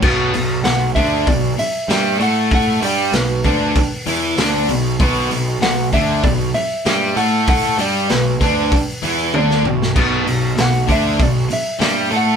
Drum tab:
CC |x---------------|----------------|----------------|----------------|
HH |--o-o-o-o-o-o-o-|o-o-o-o-o-o-o-o-|o-o-o-o-o-o-o-o-|o-o-o-o-o-o-----|
SD |----o-------o---|----o-------o---|----o-------o---|----o--------o-o|
T1 |----------------|----------------|----------------|------------o---|
T2 |----------------|----------------|----------------|--------------o-|
BD |o-----o-o-------|o-----o-o-------|o-----o-o-------|o-----o-o-------|

CC |x---------------|
HH |--o-o-o-o-o-o-o-|
SD |----o-------o---|
T1 |----------------|
T2 |----------------|
BD |o-----o-o-------|